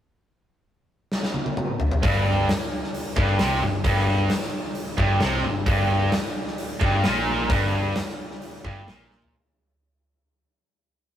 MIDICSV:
0, 0, Header, 1, 4, 480
1, 0, Start_track
1, 0, Key_signature, -2, "minor"
1, 0, Tempo, 455927
1, 224, Time_signature, 4, 2, 24, 8
1, 11750, End_track
2, 0, Start_track
2, 0, Title_t, "Distorted electric guitar"
2, 0, Program_c, 0, 30
2, 2142, Note_on_c, 0, 43, 111
2, 2610, Note_off_c, 0, 43, 0
2, 3334, Note_on_c, 0, 43, 91
2, 3565, Note_off_c, 0, 43, 0
2, 3582, Note_on_c, 0, 48, 118
2, 3809, Note_off_c, 0, 48, 0
2, 3818, Note_on_c, 0, 43, 73
2, 4006, Note_off_c, 0, 43, 0
2, 4045, Note_on_c, 0, 43, 112
2, 4520, Note_off_c, 0, 43, 0
2, 5243, Note_on_c, 0, 43, 90
2, 5479, Note_off_c, 0, 43, 0
2, 5483, Note_on_c, 0, 48, 116
2, 5719, Note_off_c, 0, 48, 0
2, 5731, Note_on_c, 0, 43, 71
2, 5923, Note_off_c, 0, 43, 0
2, 5964, Note_on_c, 0, 43, 119
2, 6441, Note_off_c, 0, 43, 0
2, 7176, Note_on_c, 0, 43, 94
2, 7407, Note_on_c, 0, 46, 114
2, 7408, Note_off_c, 0, 43, 0
2, 7885, Note_off_c, 0, 46, 0
2, 7897, Note_on_c, 0, 43, 111
2, 8370, Note_off_c, 0, 43, 0
2, 9108, Note_on_c, 0, 43, 86
2, 9336, Note_on_c, 0, 46, 97
2, 9337, Note_off_c, 0, 43, 0
2, 9813, Note_off_c, 0, 46, 0
2, 11750, End_track
3, 0, Start_track
3, 0, Title_t, "Picked electric bass"
3, 0, Program_c, 1, 34
3, 2137, Note_on_c, 1, 31, 98
3, 2581, Note_off_c, 1, 31, 0
3, 3330, Note_on_c, 1, 31, 96
3, 3553, Note_off_c, 1, 31, 0
3, 3571, Note_on_c, 1, 36, 95
3, 3794, Note_off_c, 1, 36, 0
3, 3810, Note_on_c, 1, 31, 75
3, 4033, Note_off_c, 1, 31, 0
3, 4048, Note_on_c, 1, 31, 84
3, 4495, Note_off_c, 1, 31, 0
3, 5242, Note_on_c, 1, 31, 89
3, 5466, Note_off_c, 1, 31, 0
3, 5472, Note_on_c, 1, 36, 96
3, 5703, Note_off_c, 1, 36, 0
3, 5722, Note_on_c, 1, 31, 85
3, 5949, Note_off_c, 1, 31, 0
3, 5960, Note_on_c, 1, 31, 94
3, 6412, Note_off_c, 1, 31, 0
3, 7165, Note_on_c, 1, 31, 96
3, 7393, Note_off_c, 1, 31, 0
3, 7414, Note_on_c, 1, 34, 92
3, 7862, Note_off_c, 1, 34, 0
3, 7891, Note_on_c, 1, 31, 93
3, 8341, Note_off_c, 1, 31, 0
3, 9100, Note_on_c, 1, 31, 86
3, 9323, Note_off_c, 1, 31, 0
3, 9341, Note_on_c, 1, 34, 100
3, 9788, Note_off_c, 1, 34, 0
3, 11750, End_track
4, 0, Start_track
4, 0, Title_t, "Drums"
4, 1175, Note_on_c, 9, 38, 70
4, 1280, Note_off_c, 9, 38, 0
4, 1298, Note_on_c, 9, 38, 64
4, 1403, Note_off_c, 9, 38, 0
4, 1412, Note_on_c, 9, 48, 77
4, 1517, Note_off_c, 9, 48, 0
4, 1537, Note_on_c, 9, 48, 84
4, 1642, Note_off_c, 9, 48, 0
4, 1654, Note_on_c, 9, 47, 85
4, 1759, Note_off_c, 9, 47, 0
4, 1891, Note_on_c, 9, 43, 92
4, 1996, Note_off_c, 9, 43, 0
4, 2016, Note_on_c, 9, 43, 99
4, 2121, Note_off_c, 9, 43, 0
4, 2138, Note_on_c, 9, 36, 125
4, 2145, Note_on_c, 9, 46, 62
4, 2244, Note_off_c, 9, 36, 0
4, 2250, Note_off_c, 9, 46, 0
4, 2623, Note_on_c, 9, 46, 60
4, 2625, Note_on_c, 9, 38, 114
4, 2728, Note_off_c, 9, 46, 0
4, 2730, Note_off_c, 9, 38, 0
4, 2988, Note_on_c, 9, 38, 33
4, 3094, Note_off_c, 9, 38, 0
4, 3099, Note_on_c, 9, 46, 61
4, 3204, Note_off_c, 9, 46, 0
4, 3332, Note_on_c, 9, 36, 106
4, 3437, Note_off_c, 9, 36, 0
4, 3570, Note_on_c, 9, 46, 62
4, 3572, Note_on_c, 9, 38, 108
4, 3676, Note_off_c, 9, 46, 0
4, 3678, Note_off_c, 9, 38, 0
4, 4047, Note_on_c, 9, 36, 109
4, 4048, Note_on_c, 9, 46, 59
4, 4153, Note_off_c, 9, 36, 0
4, 4154, Note_off_c, 9, 46, 0
4, 4524, Note_on_c, 9, 46, 63
4, 4526, Note_on_c, 9, 38, 94
4, 4629, Note_off_c, 9, 46, 0
4, 4632, Note_off_c, 9, 38, 0
4, 4651, Note_on_c, 9, 38, 31
4, 4756, Note_off_c, 9, 38, 0
4, 4998, Note_on_c, 9, 46, 61
4, 5103, Note_off_c, 9, 46, 0
4, 5242, Note_on_c, 9, 36, 103
4, 5347, Note_off_c, 9, 36, 0
4, 5478, Note_on_c, 9, 46, 55
4, 5480, Note_on_c, 9, 38, 114
4, 5583, Note_off_c, 9, 46, 0
4, 5586, Note_off_c, 9, 38, 0
4, 5962, Note_on_c, 9, 46, 62
4, 5963, Note_on_c, 9, 36, 115
4, 6068, Note_off_c, 9, 36, 0
4, 6068, Note_off_c, 9, 46, 0
4, 6443, Note_on_c, 9, 46, 61
4, 6445, Note_on_c, 9, 38, 100
4, 6549, Note_off_c, 9, 46, 0
4, 6551, Note_off_c, 9, 38, 0
4, 6813, Note_on_c, 9, 38, 35
4, 6918, Note_off_c, 9, 38, 0
4, 6928, Note_on_c, 9, 46, 62
4, 7033, Note_off_c, 9, 46, 0
4, 7171, Note_on_c, 9, 36, 109
4, 7276, Note_off_c, 9, 36, 0
4, 7408, Note_on_c, 9, 46, 63
4, 7410, Note_on_c, 9, 38, 117
4, 7514, Note_off_c, 9, 46, 0
4, 7516, Note_off_c, 9, 38, 0
4, 7894, Note_on_c, 9, 36, 118
4, 7897, Note_on_c, 9, 46, 70
4, 7999, Note_off_c, 9, 36, 0
4, 8002, Note_off_c, 9, 46, 0
4, 8376, Note_on_c, 9, 46, 65
4, 8378, Note_on_c, 9, 38, 110
4, 8482, Note_off_c, 9, 46, 0
4, 8484, Note_off_c, 9, 38, 0
4, 8505, Note_on_c, 9, 38, 30
4, 8610, Note_off_c, 9, 38, 0
4, 8749, Note_on_c, 9, 38, 32
4, 8854, Note_off_c, 9, 38, 0
4, 8861, Note_on_c, 9, 46, 57
4, 8966, Note_off_c, 9, 46, 0
4, 9102, Note_on_c, 9, 36, 91
4, 9207, Note_off_c, 9, 36, 0
4, 9347, Note_on_c, 9, 46, 52
4, 9349, Note_on_c, 9, 38, 113
4, 9452, Note_off_c, 9, 46, 0
4, 9455, Note_off_c, 9, 38, 0
4, 9591, Note_on_c, 9, 38, 66
4, 9696, Note_off_c, 9, 38, 0
4, 9710, Note_on_c, 9, 43, 97
4, 9815, Note_off_c, 9, 43, 0
4, 11750, End_track
0, 0, End_of_file